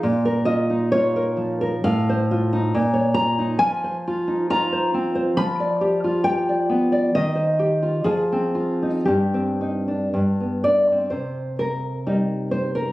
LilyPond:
\new Staff \with { instrumentName = "Nylon-string guitar" } { \time 2/4 \key bes \dorian \tempo 4 = 66 << { r8 ees''8 des''4 | f''4. bes''8 | \key c \minor aes''4 bes''4 | b''4 g''4 |
ees''4 aes'4 | g'4. d''8 | c''8 bes'4 c''16 bes'16 | } \\ { bes,16 bes'16 f'16 ees'16 f'16 bes'16 f16 bes'16 | a,16 c''16 f'16 ees'16 bes,16 des''16 f'16 ees'16 | f16 c''16 f'16 ees'16 f'16 c''16 c'16 c''16 | f16 d''16 g'16 f'16 g'16 d''16 b16 d''16 |
ees16 c''16 g'16 f'16 f16 c'16 f'16 ees'16 | g,16 c'16 ees'16 d'16 g,16 b16 d'16 c'16 | c4 <g ees'>4 | } >> }